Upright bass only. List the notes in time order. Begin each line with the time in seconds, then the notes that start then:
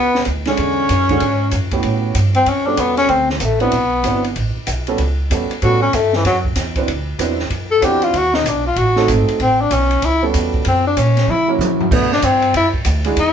Already playing: C#2
0.26 D2
0.58 E2
0.89 F#2
1.21 G#2
1.52 F#2
1.84 A2
2.15 G2
2.46 F#2
2.77 E2
3.09 D2
3.41 A1
3.72 B1
4.04 G1
4.36 A1
4.56 muted upright bass stroke
4.67 B1
4.99 C#2
5.30 E2
5.49 muted upright bass stroke
5.62 A2
5.93 G2
6.25 F#2
6.56 E2
6.87 D2
7.19 E2
7.50 F#2
7.82 E2
8.13 D#2
8.44 B1
8.76 A1
9.08 G#1
9.28 muted upright bass stroke
9.40 A1
9.71 B1
10.02 C#2
10.34 E2
10.66 F#2
10.97 A#2
11.27 C#3
11.58 C#3
11.91 B2
12.22 G2
12.54 F#2
12.85 D2
13.16 E2